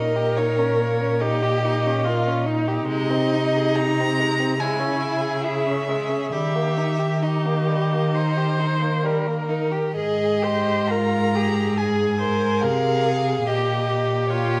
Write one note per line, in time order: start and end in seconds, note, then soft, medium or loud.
0.00 2.87 A#2 soft
0.00 0.17 D#4 soft
0.00 1.22 A#4 soft
0.00 0.38 D#5 soft
0.16 0.40 G4 soft
0.37 0.59 D#4 soft
0.37 1.22 C#5 soft
0.58 0.82 C#4 soft
0.80 1.03 A#3 soft
1.01 1.21 C#4 soft
1.21 1.44 D#4 soft
1.21 2.06 G4 medium
1.21 2.46 D#5 medium
1.42 1.66 G4 soft
1.64 1.87 D#4 soft
1.86 2.09 C#4 soft
2.05 2.28 A#3 soft
2.05 2.48 F4 soft
2.27 2.48 C#4 soft
2.46 2.69 D#4 soft
2.46 4.59 D#4 soft
2.68 2.87 G4 soft
2.87 4.61 C3 soft
2.87 3.12 G#3 soft
2.87 3.77 D#5 medium
3.10 3.35 C4 soft
3.34 3.58 D#4 soft
3.56 3.80 G#4 soft
3.75 4.01 D#4 soft
3.75 4.61 A#5 medium
4.00 4.21 C4 soft
4.20 4.41 G#3 soft
4.39 4.57 C4 soft
4.58 6.34 C#3 soft
4.58 4.81 G#3 soft
4.58 5.46 E4 soft
4.58 5.44 G#5 medium
4.80 5.02 C#4 soft
5.00 5.23 E4 soft
5.21 5.45 G#4 soft
5.42 5.68 E4 soft
5.42 5.87 G#4 soft
5.42 6.31 E5 medium
5.67 5.90 C#4 soft
5.88 6.11 G#3 soft
5.88 6.34 G#4 soft
6.09 6.32 C#4 soft
6.32 9.75 D#3 soft
6.32 6.57 G3 soft
6.32 7.14 G4 soft
6.32 7.25 E5 medium
6.55 6.79 A#3 soft
6.77 7.00 D#4 soft
6.99 7.24 G4 soft
7.22 7.47 D#4 soft
7.22 8.16 G4 soft
7.22 9.05 D#5 soft
7.45 7.69 A#3 soft
7.68 7.94 G3 soft
7.92 8.14 A#3 soft
8.14 8.39 D#4 soft
8.14 9.07 C5 medium
8.37 8.61 G4 soft
8.60 8.83 D#4 soft
8.81 9.05 A#3 soft
9.04 9.28 G3 soft
9.04 9.95 A#4 soft
9.27 9.50 A#3 soft
9.48 9.73 D#4 soft
9.71 9.95 G4 soft
9.94 12.64 G#2 soft
9.94 10.44 G#4 soft
9.94 10.45 G#4 soft
9.94 10.89 D#5 medium
10.42 10.92 G4 soft
10.42 10.92 C5 soft
10.87 11.36 F4 soft
10.87 11.37 A#4 soft
10.87 11.79 A#5 medium
11.35 11.80 G4 soft
11.35 11.77 G#4 soft
11.77 12.20 G#4 soft
11.77 12.63 G#5 medium
12.21 12.63 A#4 soft
12.21 12.65 C5 soft
12.61 13.46 C3 soft
12.61 13.47 G#4 soft
12.61 13.08 A#4 soft
12.61 13.48 F5 medium
13.06 13.49 G#4 soft
13.46 14.60 A#2 soft
13.46 14.32 G4 soft
13.46 13.88 G4 soft
13.46 14.29 D#5 medium
13.89 14.60 G4 soft
14.30 14.60 F4 medium
14.30 14.60 C#5 medium